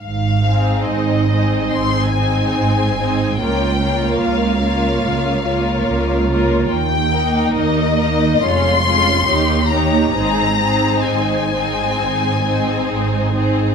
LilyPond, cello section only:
\new Staff \with { instrumentName = "Cello section" } { \clef bass \time 4/4 \key aes \major \tempo 4 = 70 aes,4 aes,4 aes,4 aes,4 | des,4 des,4 des,4 des,4 | ees,4 ees,4 f,4 ees,4 | aes,4 aes,4 aes,4 aes,4 | }